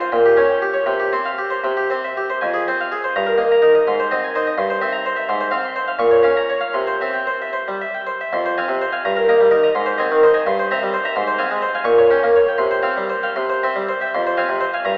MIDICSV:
0, 0, Header, 1, 2, 480
1, 0, Start_track
1, 0, Key_signature, -4, "minor"
1, 0, Tempo, 499584
1, 848, Time_signature, 6, 3, 24, 8
1, 2785, Tempo, 478469
1, 6145, Tempo, 520382
1, 8065, Tempo, 471698
1, 11905, Tempo, 510204
1, 13825, Tempo, 481155
1, 14656, End_track
2, 0, Start_track
2, 0, Title_t, "Harpsichord"
2, 0, Program_c, 0, 6
2, 7, Note_on_c, 0, 72, 55
2, 117, Note_on_c, 0, 79, 82
2, 120, Note_on_c, 0, 46, 67
2, 131, Note_off_c, 0, 72, 0
2, 247, Note_on_c, 0, 67, 56
2, 250, Note_off_c, 0, 79, 0
2, 353, Note_on_c, 0, 61, 52
2, 356, Note_off_c, 0, 46, 0
2, 359, Note_on_c, 0, 73, 49
2, 375, Note_off_c, 0, 67, 0
2, 475, Note_on_c, 0, 79, 54
2, 491, Note_off_c, 0, 73, 0
2, 598, Note_on_c, 0, 67, 52
2, 608, Note_off_c, 0, 79, 0
2, 613, Note_off_c, 0, 61, 0
2, 708, Note_on_c, 0, 73, 50
2, 729, Note_off_c, 0, 67, 0
2, 828, Note_on_c, 0, 48, 57
2, 834, Note_on_c, 0, 79, 75
2, 838, Note_off_c, 0, 73, 0
2, 957, Note_on_c, 0, 67, 48
2, 966, Note_off_c, 0, 79, 0
2, 1070, Note_off_c, 0, 48, 0
2, 1083, Note_on_c, 0, 60, 45
2, 1085, Note_on_c, 0, 72, 47
2, 1088, Note_off_c, 0, 67, 0
2, 1204, Note_on_c, 0, 77, 45
2, 1214, Note_off_c, 0, 72, 0
2, 1329, Note_on_c, 0, 67, 44
2, 1335, Note_off_c, 0, 77, 0
2, 1341, Note_off_c, 0, 60, 0
2, 1445, Note_on_c, 0, 72, 46
2, 1460, Note_off_c, 0, 67, 0
2, 1573, Note_off_c, 0, 72, 0
2, 1573, Note_on_c, 0, 48, 56
2, 1579, Note_on_c, 0, 79, 65
2, 1700, Note_on_c, 0, 67, 45
2, 1708, Note_off_c, 0, 79, 0
2, 1815, Note_off_c, 0, 48, 0
2, 1828, Note_on_c, 0, 72, 46
2, 1830, Note_off_c, 0, 67, 0
2, 1834, Note_on_c, 0, 60, 39
2, 1955, Note_off_c, 0, 72, 0
2, 1963, Note_on_c, 0, 76, 49
2, 2084, Note_off_c, 0, 76, 0
2, 2087, Note_off_c, 0, 60, 0
2, 2088, Note_on_c, 0, 67, 43
2, 2207, Note_off_c, 0, 67, 0
2, 2207, Note_on_c, 0, 72, 46
2, 2318, Note_on_c, 0, 80, 68
2, 2321, Note_off_c, 0, 72, 0
2, 2328, Note_on_c, 0, 41, 53
2, 2438, Note_on_c, 0, 68, 48
2, 2441, Note_off_c, 0, 80, 0
2, 2551, Note_off_c, 0, 41, 0
2, 2560, Note_off_c, 0, 68, 0
2, 2575, Note_on_c, 0, 60, 42
2, 2576, Note_on_c, 0, 72, 46
2, 2687, Note_off_c, 0, 72, 0
2, 2695, Note_on_c, 0, 77, 45
2, 2804, Note_on_c, 0, 68, 42
2, 2805, Note_off_c, 0, 77, 0
2, 2809, Note_off_c, 0, 60, 0
2, 2921, Note_off_c, 0, 68, 0
2, 2927, Note_on_c, 0, 72, 45
2, 3038, Note_off_c, 0, 72, 0
2, 3046, Note_on_c, 0, 82, 65
2, 3048, Note_on_c, 0, 43, 59
2, 3153, Note_on_c, 0, 70, 44
2, 3164, Note_off_c, 0, 82, 0
2, 3264, Note_on_c, 0, 58, 41
2, 3270, Note_on_c, 0, 75, 44
2, 3274, Note_off_c, 0, 43, 0
2, 3279, Note_off_c, 0, 70, 0
2, 3399, Note_off_c, 0, 75, 0
2, 3405, Note_on_c, 0, 82, 44
2, 3509, Note_on_c, 0, 70, 45
2, 3510, Note_on_c, 0, 63, 43
2, 3524, Note_off_c, 0, 58, 0
2, 3527, Note_off_c, 0, 82, 0
2, 3640, Note_off_c, 0, 70, 0
2, 3641, Note_on_c, 0, 75, 52
2, 3687, Note_off_c, 0, 63, 0
2, 3761, Note_off_c, 0, 75, 0
2, 3762, Note_on_c, 0, 84, 72
2, 3766, Note_on_c, 0, 44, 52
2, 3887, Note_on_c, 0, 72, 51
2, 3888, Note_off_c, 0, 84, 0
2, 3997, Note_off_c, 0, 44, 0
2, 4002, Note_on_c, 0, 60, 46
2, 4007, Note_on_c, 0, 75, 50
2, 4010, Note_off_c, 0, 72, 0
2, 4129, Note_off_c, 0, 75, 0
2, 4133, Note_on_c, 0, 80, 53
2, 4244, Note_on_c, 0, 72, 50
2, 4247, Note_on_c, 0, 63, 46
2, 4250, Note_off_c, 0, 60, 0
2, 4250, Note_off_c, 0, 80, 0
2, 4363, Note_off_c, 0, 72, 0
2, 4363, Note_on_c, 0, 75, 49
2, 4411, Note_off_c, 0, 63, 0
2, 4468, Note_on_c, 0, 84, 80
2, 4469, Note_on_c, 0, 43, 66
2, 4474, Note_off_c, 0, 75, 0
2, 4590, Note_off_c, 0, 84, 0
2, 4594, Note_on_c, 0, 72, 55
2, 4695, Note_off_c, 0, 43, 0
2, 4706, Note_on_c, 0, 60, 51
2, 4709, Note_on_c, 0, 76, 57
2, 4713, Note_off_c, 0, 72, 0
2, 4817, Note_on_c, 0, 82, 58
2, 4830, Note_off_c, 0, 76, 0
2, 4944, Note_off_c, 0, 82, 0
2, 4952, Note_on_c, 0, 72, 56
2, 4954, Note_off_c, 0, 60, 0
2, 5058, Note_on_c, 0, 76, 61
2, 5072, Note_off_c, 0, 72, 0
2, 5178, Note_off_c, 0, 76, 0
2, 5184, Note_on_c, 0, 44, 75
2, 5187, Note_on_c, 0, 84, 82
2, 5302, Note_on_c, 0, 72, 63
2, 5307, Note_off_c, 0, 84, 0
2, 5406, Note_on_c, 0, 77, 62
2, 5409, Note_on_c, 0, 60, 58
2, 5411, Note_off_c, 0, 44, 0
2, 5424, Note_off_c, 0, 72, 0
2, 5535, Note_off_c, 0, 77, 0
2, 5542, Note_on_c, 0, 84, 60
2, 5655, Note_on_c, 0, 72, 58
2, 5663, Note_off_c, 0, 60, 0
2, 5664, Note_off_c, 0, 84, 0
2, 5774, Note_on_c, 0, 77, 58
2, 5781, Note_off_c, 0, 72, 0
2, 5885, Note_on_c, 0, 46, 73
2, 5890, Note_on_c, 0, 85, 85
2, 5895, Note_off_c, 0, 77, 0
2, 6008, Note_on_c, 0, 73, 57
2, 6022, Note_off_c, 0, 85, 0
2, 6128, Note_on_c, 0, 61, 51
2, 6130, Note_off_c, 0, 46, 0
2, 6133, Note_on_c, 0, 77, 53
2, 6144, Note_off_c, 0, 73, 0
2, 6255, Note_on_c, 0, 82, 56
2, 6260, Note_off_c, 0, 77, 0
2, 6373, Note_on_c, 0, 73, 50
2, 6380, Note_off_c, 0, 61, 0
2, 6380, Note_off_c, 0, 82, 0
2, 6476, Note_on_c, 0, 77, 53
2, 6498, Note_off_c, 0, 73, 0
2, 6593, Note_on_c, 0, 84, 67
2, 6602, Note_off_c, 0, 77, 0
2, 6602, Note_on_c, 0, 48, 57
2, 6721, Note_on_c, 0, 72, 45
2, 6726, Note_off_c, 0, 84, 0
2, 6836, Note_off_c, 0, 48, 0
2, 6849, Note_on_c, 0, 76, 48
2, 6850, Note_off_c, 0, 72, 0
2, 6855, Note_on_c, 0, 60, 44
2, 6965, Note_on_c, 0, 79, 45
2, 6974, Note_off_c, 0, 76, 0
2, 7089, Note_on_c, 0, 72, 41
2, 7093, Note_off_c, 0, 79, 0
2, 7104, Note_off_c, 0, 60, 0
2, 7216, Note_off_c, 0, 72, 0
2, 7225, Note_on_c, 0, 76, 42
2, 7328, Note_on_c, 0, 72, 46
2, 7345, Note_off_c, 0, 76, 0
2, 7458, Note_off_c, 0, 72, 0
2, 7465, Note_on_c, 0, 55, 41
2, 7589, Note_off_c, 0, 55, 0
2, 7590, Note_on_c, 0, 76, 43
2, 7710, Note_on_c, 0, 79, 41
2, 7713, Note_off_c, 0, 76, 0
2, 7822, Note_on_c, 0, 72, 44
2, 7836, Note_off_c, 0, 79, 0
2, 7951, Note_off_c, 0, 72, 0
2, 7954, Note_on_c, 0, 76, 42
2, 8063, Note_on_c, 0, 41, 58
2, 8066, Note_on_c, 0, 84, 73
2, 8067, Note_off_c, 0, 76, 0
2, 8195, Note_on_c, 0, 72, 50
2, 8196, Note_off_c, 0, 84, 0
2, 8304, Note_off_c, 0, 41, 0
2, 8317, Note_on_c, 0, 80, 48
2, 8318, Note_on_c, 0, 60, 52
2, 8321, Note_off_c, 0, 72, 0
2, 8322, Note_on_c, 0, 77, 50
2, 8404, Note_off_c, 0, 80, 0
2, 8407, Note_off_c, 0, 77, 0
2, 8426, Note_on_c, 0, 48, 50
2, 8559, Note_off_c, 0, 48, 0
2, 8560, Note_on_c, 0, 72, 54
2, 8573, Note_off_c, 0, 60, 0
2, 8671, Note_on_c, 0, 80, 55
2, 8672, Note_on_c, 0, 77, 47
2, 8686, Note_off_c, 0, 72, 0
2, 8760, Note_off_c, 0, 80, 0
2, 8761, Note_off_c, 0, 77, 0
2, 8800, Note_on_c, 0, 43, 69
2, 8801, Note_on_c, 0, 82, 75
2, 8916, Note_on_c, 0, 70, 53
2, 8926, Note_off_c, 0, 82, 0
2, 9032, Note_off_c, 0, 43, 0
2, 9039, Note_on_c, 0, 58, 49
2, 9041, Note_on_c, 0, 75, 46
2, 9043, Note_off_c, 0, 70, 0
2, 9047, Note_on_c, 0, 82, 55
2, 9126, Note_off_c, 0, 75, 0
2, 9130, Note_off_c, 0, 82, 0
2, 9158, Note_on_c, 0, 55, 49
2, 9266, Note_on_c, 0, 63, 49
2, 9270, Note_on_c, 0, 70, 54
2, 9284, Note_off_c, 0, 55, 0
2, 9291, Note_off_c, 0, 58, 0
2, 9392, Note_on_c, 0, 75, 50
2, 9398, Note_on_c, 0, 82, 62
2, 9401, Note_off_c, 0, 70, 0
2, 9445, Note_off_c, 0, 63, 0
2, 9482, Note_off_c, 0, 75, 0
2, 9486, Note_off_c, 0, 82, 0
2, 9510, Note_on_c, 0, 84, 78
2, 9513, Note_on_c, 0, 44, 69
2, 9623, Note_on_c, 0, 72, 55
2, 9643, Note_off_c, 0, 84, 0
2, 9744, Note_on_c, 0, 75, 51
2, 9751, Note_off_c, 0, 44, 0
2, 9755, Note_on_c, 0, 80, 54
2, 9756, Note_on_c, 0, 60, 55
2, 9758, Note_off_c, 0, 72, 0
2, 9836, Note_off_c, 0, 75, 0
2, 9843, Note_off_c, 0, 80, 0
2, 9880, Note_on_c, 0, 51, 58
2, 10000, Note_on_c, 0, 63, 53
2, 10003, Note_off_c, 0, 51, 0
2, 10005, Note_on_c, 0, 72, 60
2, 10007, Note_off_c, 0, 60, 0
2, 10112, Note_on_c, 0, 80, 58
2, 10113, Note_on_c, 0, 75, 56
2, 10124, Note_off_c, 0, 72, 0
2, 10167, Note_off_c, 0, 63, 0
2, 10197, Note_off_c, 0, 75, 0
2, 10197, Note_off_c, 0, 80, 0
2, 10237, Note_on_c, 0, 43, 75
2, 10241, Note_on_c, 0, 84, 84
2, 10358, Note_off_c, 0, 84, 0
2, 10369, Note_on_c, 0, 72, 65
2, 10461, Note_off_c, 0, 43, 0
2, 10482, Note_off_c, 0, 72, 0
2, 10488, Note_on_c, 0, 60, 58
2, 10491, Note_on_c, 0, 76, 56
2, 10495, Note_on_c, 0, 82, 69
2, 10567, Note_off_c, 0, 76, 0
2, 10569, Note_off_c, 0, 82, 0
2, 10609, Note_on_c, 0, 55, 61
2, 10719, Note_on_c, 0, 72, 67
2, 10721, Note_off_c, 0, 55, 0
2, 10725, Note_off_c, 0, 60, 0
2, 10833, Note_on_c, 0, 76, 68
2, 10835, Note_off_c, 0, 72, 0
2, 10836, Note_on_c, 0, 82, 72
2, 10915, Note_off_c, 0, 76, 0
2, 10917, Note_off_c, 0, 82, 0
2, 10944, Note_on_c, 0, 84, 101
2, 10947, Note_on_c, 0, 44, 79
2, 11062, Note_on_c, 0, 72, 66
2, 11069, Note_off_c, 0, 84, 0
2, 11174, Note_on_c, 0, 77, 62
2, 11176, Note_on_c, 0, 80, 74
2, 11177, Note_off_c, 0, 44, 0
2, 11178, Note_on_c, 0, 60, 65
2, 11188, Note_off_c, 0, 72, 0
2, 11263, Note_off_c, 0, 77, 0
2, 11264, Note_off_c, 0, 80, 0
2, 11297, Note_on_c, 0, 56, 63
2, 11415, Note_on_c, 0, 72, 67
2, 11424, Note_off_c, 0, 56, 0
2, 11430, Note_off_c, 0, 60, 0
2, 11542, Note_off_c, 0, 72, 0
2, 11543, Note_on_c, 0, 77, 62
2, 11547, Note_on_c, 0, 80, 63
2, 11628, Note_off_c, 0, 77, 0
2, 11630, Note_off_c, 0, 80, 0
2, 11641, Note_on_c, 0, 46, 77
2, 11645, Note_on_c, 0, 85, 93
2, 11780, Note_off_c, 0, 85, 0
2, 11781, Note_on_c, 0, 73, 64
2, 11888, Note_off_c, 0, 46, 0
2, 11906, Note_on_c, 0, 61, 64
2, 11909, Note_on_c, 0, 79, 66
2, 11910, Note_off_c, 0, 73, 0
2, 11991, Note_off_c, 0, 79, 0
2, 12028, Note_on_c, 0, 58, 62
2, 12146, Note_on_c, 0, 73, 61
2, 12147, Note_off_c, 0, 58, 0
2, 12150, Note_off_c, 0, 61, 0
2, 12264, Note_on_c, 0, 79, 61
2, 12266, Note_off_c, 0, 73, 0
2, 12347, Note_off_c, 0, 79, 0
2, 12353, Note_on_c, 0, 84, 87
2, 12358, Note_on_c, 0, 48, 72
2, 12477, Note_on_c, 0, 72, 55
2, 12490, Note_off_c, 0, 84, 0
2, 12585, Note_on_c, 0, 77, 55
2, 12588, Note_on_c, 0, 60, 49
2, 12590, Note_on_c, 0, 79, 57
2, 12599, Note_off_c, 0, 48, 0
2, 12612, Note_off_c, 0, 72, 0
2, 12683, Note_off_c, 0, 77, 0
2, 12686, Note_off_c, 0, 79, 0
2, 12720, Note_on_c, 0, 55, 53
2, 12839, Note_on_c, 0, 72, 52
2, 12855, Note_off_c, 0, 55, 0
2, 12855, Note_off_c, 0, 60, 0
2, 12966, Note_on_c, 0, 79, 54
2, 12968, Note_on_c, 0, 77, 52
2, 12975, Note_off_c, 0, 72, 0
2, 13058, Note_off_c, 0, 79, 0
2, 13059, Note_off_c, 0, 77, 0
2, 13088, Note_on_c, 0, 84, 76
2, 13089, Note_on_c, 0, 48, 59
2, 13215, Note_on_c, 0, 72, 54
2, 13221, Note_off_c, 0, 84, 0
2, 13330, Note_off_c, 0, 48, 0
2, 13344, Note_on_c, 0, 60, 45
2, 13345, Note_off_c, 0, 72, 0
2, 13348, Note_on_c, 0, 76, 47
2, 13348, Note_on_c, 0, 79, 50
2, 13433, Note_off_c, 0, 76, 0
2, 13433, Note_off_c, 0, 79, 0
2, 13461, Note_on_c, 0, 55, 51
2, 13582, Note_on_c, 0, 72, 53
2, 13590, Note_off_c, 0, 55, 0
2, 13599, Note_off_c, 0, 60, 0
2, 13700, Note_on_c, 0, 76, 46
2, 13709, Note_on_c, 0, 79, 55
2, 13710, Note_off_c, 0, 72, 0
2, 13787, Note_off_c, 0, 76, 0
2, 13793, Note_off_c, 0, 79, 0
2, 13824, Note_on_c, 0, 84, 85
2, 13827, Note_on_c, 0, 41, 69
2, 13948, Note_on_c, 0, 72, 59
2, 13952, Note_off_c, 0, 84, 0
2, 14054, Note_on_c, 0, 77, 53
2, 14058, Note_on_c, 0, 80, 57
2, 14060, Note_on_c, 0, 60, 51
2, 14062, Note_off_c, 0, 41, 0
2, 14074, Note_off_c, 0, 72, 0
2, 14145, Note_off_c, 0, 77, 0
2, 14147, Note_off_c, 0, 80, 0
2, 14172, Note_on_c, 0, 48, 57
2, 14286, Note_on_c, 0, 72, 60
2, 14304, Note_off_c, 0, 48, 0
2, 14314, Note_off_c, 0, 60, 0
2, 14416, Note_on_c, 0, 77, 51
2, 14421, Note_off_c, 0, 72, 0
2, 14421, Note_on_c, 0, 80, 60
2, 14505, Note_off_c, 0, 77, 0
2, 14508, Note_off_c, 0, 80, 0
2, 14529, Note_on_c, 0, 43, 75
2, 14533, Note_on_c, 0, 82, 87
2, 14656, Note_off_c, 0, 43, 0
2, 14656, Note_off_c, 0, 82, 0
2, 14656, End_track
0, 0, End_of_file